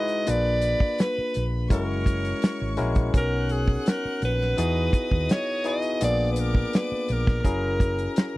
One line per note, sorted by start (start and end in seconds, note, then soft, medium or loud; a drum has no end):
0.00 0.29 G#3 medium
0.00 0.28 D#4 medium
0.00 0.29 E4 medium
0.00 0.29 F#4 medium
0.00 0.24 G#4 medium
0.00 0.28 B4 medium
0.00 0.31 D#5 loud
0.00 0.24 G#5 medium
0.08 closed hi-hat medium
0.26 0.74 A#1 medium
0.26 1.45 A#3 medium
0.26 1.46 D4 medium
0.26 1.46 F4 medium
0.26 1.46 G#4 medium
0.26 1.68 B4 medium
0.26 1.46 B4 medium
0.26 1.03 D5 loud
0.26 1.68 B5 loud
0.26 closed hi-hat medium
0.61 closed hi-hat medium
0.80 kick medium
0.98 1.45 B4 medium
0.98 snare loud
0.98 closed hi-hat medium
1.18 muted fingered electric bass stroke soft
1.34 1.66 A#1 medium
1.34 closed hi-hat medium
1.70 2.32 F#1 medium
1.70 2.59 G#3 medium
1.70 2.59 C#4 medium
1.70 2.59 E4 medium
1.70 2.60 F#4 medium
1.70 2.60 A#4 medium
1.70 2.76 A#4 medium
1.70 3.11 C#5 medium
1.70 3.11 C#6 medium
1.70 kick medium
1.70 closed hi-hat medium
2.06 kick medium
2.06 closed hi-hat medium
2.25 closed hi-hat soft
2.42 snare loud
2.42 closed hi-hat medium
2.62 2.76 G#1 medium
2.77 3.09 A#1 medium
2.77 3.07 G#3 medium
2.77 3.07 C#4 medium
2.77 3.07 E4 medium
2.77 3.08 F#4 medium
2.77 3.08 A#4 loud
2.77 closed hi-hat medium
2.95 kick medium
2.95 closed hi-hat medium
3.13 3.75 B1 medium
3.13 4.32 B3 medium
3.13 4.33 C#4 medium
3.13 4.33 D#4 medium
3.13 4.33 F#4 medium
3.13 3.21 G#4 medium
3.13 3.53 A#4 medium
3.13 4.55 F#5 medium
3.13 4.55 F#6 loud
3.13 kick loud
3.13 closed hi-hat medium
3.21 4.36 A#4 medium
3.49 3.90 G#4 medium
3.49 closed hi-hat medium
3.68 kick medium
3.86 4.23 A#4 medium
3.86 snare loud
3.86 closed hi-hat medium
4.05 muted fingered electric bass stroke soft
4.22 4.53 A#1 medium
4.22 5.33 B4 medium
4.22 closed hi-hat medium
4.41 snare soft
4.57 4.88 E2 loud
4.57 5.47 B3 medium
4.57 5.47 D#4 medium
4.57 5.47 E4 medium
4.57 5.47 F#4 medium
4.57 5.47 G#4 medium
4.57 5.98 D#5 medium
4.57 5.98 D#6 medium
4.57 closed hi-hat medium
4.93 kick medium
4.93 closed hi-hat medium
5.11 5.27 D#2 medium
5.11 kick medium
5.29 5.70 C#5 medium
5.29 snare loud
5.29 closed hi-hat loud
5.64 5.94 B3 medium
5.64 5.95 D#4 medium
5.64 5.95 E4 medium
5.64 5.95 F#4 medium
5.64 5.95 G#4 medium
5.64 6.02 D#5 loud
5.64 closed hi-hat medium
5.82 closed hi-hat medium
6.01 6.63 A#1 medium
6.01 7.21 A#3 medium
6.01 7.20 B3 medium
6.01 7.20 D4 medium
6.01 7.20 F4 medium
6.01 7.21 G#4 medium
6.01 7.42 D5 medium
6.01 6.29 D5 loud
6.01 7.42 D6 loud
6.01 closed hi-hat loud
6.32 6.41 B4 medium
6.36 6.77 A#4 medium
6.36 closed hi-hat medium
6.55 kick medium
6.73 7.14 B4 medium
6.73 snare loud
6.73 closed hi-hat medium
6.92 muted fingered electric bass stroke soft
7.08 7.40 A#1 medium
7.08 8.38 A#4 medium
7.08 closed hi-hat medium
7.27 kick loud
7.27 snare soft
7.44 8.06 F#1 medium
7.44 8.34 C#4 medium
7.44 8.34 E4 medium
7.44 8.34 F#4 medium
7.44 8.34 G#4 medium
7.44 8.38 A#4 medium
7.44 8.34 A#4 medium
7.44 8.38 A#5 medium
7.44 kick medium
7.44 closed hi-hat medium
7.80 kick medium
7.80 closed hi-hat medium
7.99 closed hi-hat soft
8.16 snare loud
8.16 closed hi-hat medium